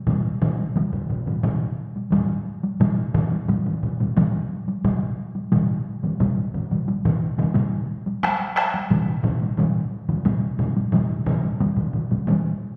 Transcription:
0.07 taiko low-mid loud
0.07 taiko mid medium
0.07 taiko high medium
0.42 taiko low-mid loud
0.42 taiko mid loud
0.60 taiko high soft
0.76 taiko low-mid medium
0.76 taiko mid medium
0.76 taiko high medium
0.93 taiko low-mid medium
0.93 taiko mid medium
1.09 taiko low-mid medium
1.09 taiko mid medium
1.26 taiko low-mid medium
1.26 taiko mid medium
1.26 taiko high soft
1.43 taiko low-mid loud
1.43 taiko mid loud
1.43 taiko high medium
1.96 taiko high soft
2.12 taiko low-mid loud
2.12 taiko mid medium
2.12 taiko high medium
2.64 taiko high medium
2.80 taiko low-mid loud
2.80 taiko mid medium
2.80 taiko high medium
3.15 taiko low-mid loud
3.15 taiko mid loud
3.32 taiko high medium
3.48 taiko low-mid medium
3.48 taiko mid medium
3.48 taiko high medium
3.66 taiko low-mid medium
3.66 taiko mid medium
3.83 taiko low-mid medium
3.83 taiko mid medium
4.00 taiko low-mid medium
4.00 taiko mid medium
4.00 taiko high medium
4.17 taiko low-mid loud
4.17 taiko mid loud
4.17 taiko high medium
4.68 taiko high medium
4.84 taiko low-mid loud
4.84 taiko mid medium
4.84 taiko high medium
5.35 taiko high medium
5.52 taiko low-mid loud
5.52 taiko mid medium
5.52 taiko high medium
6.03 taiko low-mid medium
6.03 taiko mid medium
6.03 taiko high medium
6.20 taiko low-mid medium
6.20 taiko mid medium
6.20 taiko high medium
6.54 taiko low-mid medium
6.54 taiko mid medium
6.71 taiko low-mid medium
6.71 taiko mid medium
6.71 taiko high medium
6.88 taiko high medium
7.05 taiko low-mid medium
7.05 taiko mid loud
7.39 taiko low-mid loud
7.39 taiko mid medium
7.39 taiko high medium
7.55 taiko low-mid loud
7.55 taiko mid medium
7.55 taiko high medium
8.06 taiko high medium
8.23 taiko rim medium
8.23 taiko high medium
8.57 taiko rim medium
8.74 taiko high medium
8.90 taiko low-mid medium
8.90 taiko mid loud
8.90 taiko high medium
9.24 taiko low-mid loud
9.24 taiko mid loud
9.42 taiko high medium
9.57 taiko low-mid medium
9.57 taiko mid loud
9.57 taiko high medium
10.09 taiko low-mid medium
10.09 taiko mid medium
10.09 taiko high medium
10.25 taiko low-mid loud
10.25 taiko mid medium
10.25 taiko high medium
10.59 taiko low-mid loud
10.59 taiko mid medium
10.77 taiko high medium
10.92 taiko low-mid loud
10.92 taiko mid medium
10.92 taiko high medium
11.26 taiko low-mid loud
11.26 taiko mid loud
11.45 taiko high medium
11.60 taiko low-mid medium
11.60 taiko mid medium
11.60 taiko high medium
11.77 taiko low-mid medium
11.77 taiko mid medium
11.93 taiko low-mid medium
11.93 taiko mid medium
12.11 taiko low-mid medium
12.11 taiko mid medium
12.11 taiko high medium
12.27 taiko low-mid medium
12.27 taiko mid loud
12.27 taiko high medium

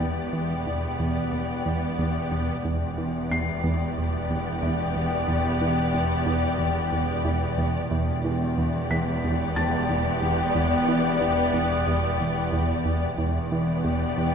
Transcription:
0.00 2.60 E1 medium
0.00 2.60 E2 medium
0.00 0.20 E2 medium
0.00 2.60 B3 medium
0.00 2.60 G4 medium
0.00 2.60 D5 medium
0.33 0.53 E3 soft
0.67 0.87 E2 soft
1.00 1.19 E2 medium
1.32 1.52 E2 soft
1.66 1.86 E2 medium
1.99 2.19 E2 medium
2.31 2.51 E2 medium
2.64 7.88 E1 soft
2.64 7.88 E2 soft
2.64 2.85 E2 medium
2.64 7.88 B3 medium
2.64 7.89 G4 medium
2.64 7.89 D5 medium
2.98 3.18 E3 soft
3.31 3.51 E2 medium
3.31 5.25 C7 soft
3.64 3.83 E2 medium
3.98 4.17 E2 soft
4.30 4.50 E2 medium
4.63 4.82 E2 medium
4.96 5.15 E2 medium
5.28 5.48 E2 medium
5.61 5.81 E3 soft
5.94 6.14 E2 medium
6.26 6.46 E2 medium
6.59 6.79 E2 medium
6.92 7.12 E2 medium
7.25 7.45 E2 medium
7.58 7.78 E2 medium
7.91 13.15 E1 medium
7.91 8.11 E2 medium
7.91 13.15 E2 medium
7.91 13.15 B3 medium
7.91 13.15 G4 medium
7.91 13.15 D5 medium
8.25 8.45 E3 soft
8.58 8.78 E2 medium
8.91 9.11 E2 medium
8.91 10.85 B6 soft
9.24 9.44 E2 medium
9.56 9.76 E2 medium
9.56 11.51 A5 soft
9.56 11.51 A6 soft
9.89 10.09 E2 medium
10.22 10.42 E2 medium
10.55 10.75 E2 medium
10.88 11.08 E3 soft
11.21 11.41 E2 medium
11.54 11.74 E2 medium
11.87 12.07 E2 medium
12.20 12.40 E2 soft
12.53 12.73 E2 medium
12.85 13.06 E2 medium
13.18 14.35 E1 soft
13.18 13.38 E2 medium
13.18 14.35 E2 soft
13.18 14.35 B3 medium
13.18 14.35 G4 medium
13.18 14.35 D5 medium
13.52 13.72 E3 soft
13.85 14.05 E2 medium
14.17 14.35 E2 medium

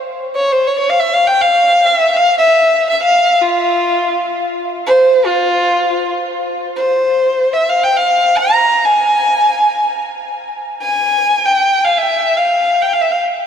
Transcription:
0.35 0.54 C#5 medium
0.52 0.69 C5 medium
0.67 0.78 C#5 medium
0.79 0.91 C#5 medium
0.90 1.01 F5 medium
1.00 1.15 E5 medium
1.14 1.29 F5 medium
1.27 1.43 G5 medium
1.41 1.87 F5 medium
1.86 2.18 E5 medium
2.16 2.37 F5 medium
2.38 2.86 E5 medium
2.90 3.00 E5 medium
3.03 3.43 F5 medium
3.41 4.34 F4 medium
4.86 5.27 C5 medium
5.25 6.06 F4 medium
6.76 7.54 C5 medium
7.53 7.71 E5 medium
7.69 7.85 F5 medium
7.84 7.99 G5 medium
7.97 8.39 F5 medium
8.37 8.86 A#5 medium
8.85 10.00 G#5 medium
10.82 11.47 G#5 medium
11.45 11.86 G5 medium
11.84 12.00 F5 medium
11.98 12.39 E5 medium
12.37 12.83 F5 medium
12.82 12.94 G5 medium
12.93 13.03 F5 medium
13.01 13.13 E5 medium
13.11 13.20 F5 medium

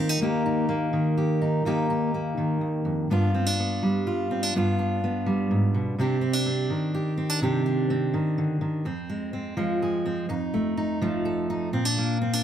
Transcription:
0.00 0.21 D#2 medium
0.00 0.93 D#3 medium
0.00 0.21 A#3 soft
0.00 0.21 G4 soft
0.09 0.21 D#4 soft
0.21 1.64 D#2 medium
0.21 0.68 A#3 medium
0.21 0.45 D#4 soft
0.21 1.17 G4 medium
0.46 1.40 D#4 soft
0.69 1.62 A#3 medium
0.93 2.36 D#3 medium
1.18 1.67 G4 soft
1.42 1.62 D#4 soft
1.65 2.60 D#2 medium
1.65 2.13 A#3 medium
1.65 1.89 D#4 medium
1.65 3.12 G4 medium
1.90 3.07 D#4 soft
2.14 3.07 A#3 soft
2.38 3.09 D#3 medium
2.61 2.84 D#2 medium
2.85 3.09 F2 medium
3.10 4.51 G2 medium
3.10 3.59 B3 medium
3.10 3.34 D4 medium
3.10 4.06 F4 medium
3.35 3.46 C4 soft
3.46 4.30 D4 soft
3.60 4.51 B3 soft
3.83 4.60 G3 medium
4.07 4.54 F4 medium
4.31 4.43 C4 soft
4.43 4.54 D4 soft
4.55 5.50 G2 medium
4.55 5.03 B3 medium
4.55 4.78 D4 soft
4.55 5.99 F4 medium
4.79 6.00 D4 soft
5.04 5.95 B3 soft
5.26 6.70 G3 medium
5.51 5.74 G#2 medium
5.74 5.98 B2 medium
5.99 6.70 C3 medium
5.99 6.21 C4 medium
5.99 6.21 D4 soft
5.99 6.93 G4 medium
6.21 6.33 C4 medium
6.33 7.17 D4 soft
6.46 7.17 C4 medium
6.70 8.12 D#3 medium
6.94 7.39 G4 medium
7.17 7.30 C4 medium
7.30 7.41 D4 soft
7.42 8.13 C3 medium
7.42 7.89 C4 soft
7.42 7.65 D4 medium
7.42 8.83 G4 medium
7.66 8.83 D4 medium
7.90 8.83 C4 soft
8.14 8.60 D#3 medium
8.38 8.61 D3 medium
8.61 8.85 D#3 medium
8.85 10.26 F2 medium
8.85 9.33 C4 medium
9.10 9.56 G#3 medium
9.33 10.04 C4 soft
9.57 10.33 F3 medium
9.57 10.29 G#3 medium
9.82 10.27 G#4 soft
10.06 10.29 C4 medium
10.29 11.70 F2 medium
10.29 10.76 D#4 medium
10.54 11.01 A3 medium
10.77 11.49 D#4 medium
11.02 12.43 F3 medium
11.02 11.71 A3 medium
11.25 11.70 A4 medium
11.50 11.71 D#4 medium
11.73 12.43 A#2 medium
11.73 11.85 C4 medium
11.85 12.21 D4 soft
11.98 12.43 A#3 medium
12.22 12.33 C4 medium
12.33 12.43 D4 medium

